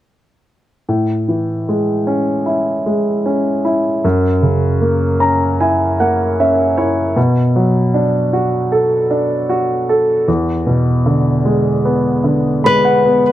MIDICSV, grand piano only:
0, 0, Header, 1, 2, 480
1, 0, Start_track
1, 0, Key_signature, 3, "major"
1, 0, Tempo, 790514
1, 535, Time_signature, 4, 2, 24, 8
1, 2454, Tempo, 779221
1, 6774, Tempo, 795756
1, 8141, End_track
2, 0, Start_track
2, 0, Title_t, "Grand piano"
2, 0, Program_c, 0, 0
2, 537, Note_on_c, 0, 45, 42
2, 636, Control_c, 0, 64, 127
2, 780, Note_on_c, 0, 52, 34
2, 1024, Note_on_c, 0, 56, 36
2, 1256, Note_on_c, 0, 61, 36
2, 1493, Note_on_c, 0, 64, 37
2, 1714, Note_off_c, 0, 52, 0
2, 1729, Note_off_c, 0, 56, 0
2, 1738, Note_on_c, 0, 56, 35
2, 1968, Note_off_c, 0, 61, 0
2, 1977, Note_on_c, 0, 61, 38
2, 2205, Note_off_c, 0, 64, 0
2, 2214, Note_on_c, 0, 64, 37
2, 2433, Note_off_c, 0, 45, 0
2, 2436, Note_off_c, 0, 56, 0
2, 2442, Note_off_c, 0, 61, 0
2, 2447, Note_off_c, 0, 64, 0
2, 2455, Note_on_c, 0, 42, 42
2, 2463, Control_c, 0, 64, 0
2, 2573, Control_c, 0, 64, 127
2, 2691, Note_on_c, 0, 49, 36
2, 2930, Note_on_c, 0, 58, 38
2, 3168, Note_on_c, 0, 61, 36
2, 3169, Note_on_c, 0, 82, 45
2, 3397, Note_off_c, 0, 82, 0
2, 3417, Note_on_c, 0, 64, 39
2, 3417, Note_on_c, 0, 80, 46
2, 3633, Note_off_c, 0, 49, 0
2, 3642, Note_off_c, 0, 80, 0
2, 3651, Note_off_c, 0, 58, 0
2, 3660, Note_on_c, 0, 58, 38
2, 3660, Note_on_c, 0, 78, 45
2, 3884, Note_off_c, 0, 78, 0
2, 3894, Note_off_c, 0, 61, 0
2, 3904, Note_on_c, 0, 61, 39
2, 3906, Note_on_c, 0, 76, 51
2, 4127, Note_off_c, 0, 76, 0
2, 4129, Note_off_c, 0, 64, 0
2, 4138, Note_on_c, 0, 64, 43
2, 4138, Note_on_c, 0, 73, 50
2, 4356, Note_off_c, 0, 42, 0
2, 4359, Note_off_c, 0, 58, 0
2, 4362, Note_off_c, 0, 73, 0
2, 4368, Note_off_c, 0, 61, 0
2, 4372, Note_off_c, 0, 64, 0
2, 4378, Note_on_c, 0, 47, 46
2, 4388, Control_c, 0, 64, 0
2, 4481, Control_c, 0, 64, 127
2, 4620, Note_on_c, 0, 54, 38
2, 4857, Note_on_c, 0, 62, 42
2, 5097, Note_on_c, 0, 66, 39
2, 5336, Note_on_c, 0, 69, 42
2, 5552, Note_off_c, 0, 54, 0
2, 5565, Note_off_c, 0, 62, 0
2, 5574, Note_on_c, 0, 62, 39
2, 5804, Note_off_c, 0, 66, 0
2, 5814, Note_on_c, 0, 66, 42
2, 6050, Note_off_c, 0, 69, 0
2, 6059, Note_on_c, 0, 69, 43
2, 6271, Note_off_c, 0, 47, 0
2, 6274, Note_off_c, 0, 62, 0
2, 6281, Note_off_c, 0, 66, 0
2, 6291, Note_off_c, 0, 69, 0
2, 6296, Note_on_c, 0, 40, 48
2, 6304, Control_c, 0, 64, 0
2, 6412, Control_c, 0, 64, 127
2, 6534, Note_on_c, 0, 47, 38
2, 6777, Note_on_c, 0, 50, 43
2, 7014, Note_on_c, 0, 56, 41
2, 7254, Note_on_c, 0, 59, 41
2, 7467, Note_off_c, 0, 47, 0
2, 7480, Note_off_c, 0, 50, 0
2, 7489, Note_on_c, 0, 50, 38
2, 7722, Note_off_c, 0, 56, 0
2, 7731, Note_on_c, 0, 83, 53
2, 7732, Note_on_c, 0, 56, 45
2, 7846, Note_off_c, 0, 83, 0
2, 7855, Note_on_c, 0, 78, 50
2, 7971, Note_off_c, 0, 59, 0
2, 7980, Note_on_c, 0, 59, 44
2, 8141, Note_off_c, 0, 40, 0
2, 8141, Note_off_c, 0, 50, 0
2, 8141, Note_off_c, 0, 56, 0
2, 8141, Note_off_c, 0, 59, 0
2, 8141, Note_off_c, 0, 78, 0
2, 8141, End_track
0, 0, End_of_file